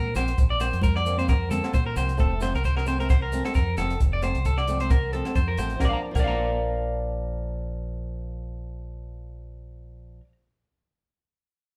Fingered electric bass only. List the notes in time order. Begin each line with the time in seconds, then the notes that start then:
Already playing: A#2
0.16 A#1
0.38 A#1
0.73 F2
1.74 A#2
1.96 C2
2.20 F1
2.55 C2
3.55 F2
3.77 F1
4.01 F1
4.35 C2
5.36 F2
5.58 A1
5.81 A#1
6.15 A#1